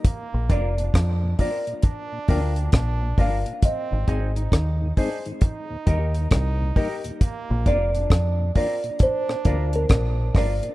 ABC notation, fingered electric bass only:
X:1
M:4/4
L:1/16
Q:"Swing 16ths" 1/4=67
K:Bbmix
V:1 name="Fingered electric bass" clef=bass
z B,,, F,,,2 F,,2 z4 D,,2 B,,,2 G,,, z | z A,,, A,,,2 E,,2 z4 E,,2 C,,2 z2 | z B,,, F,,,2 F,,2 z4 D,,2 B,,,2 G,,, z |]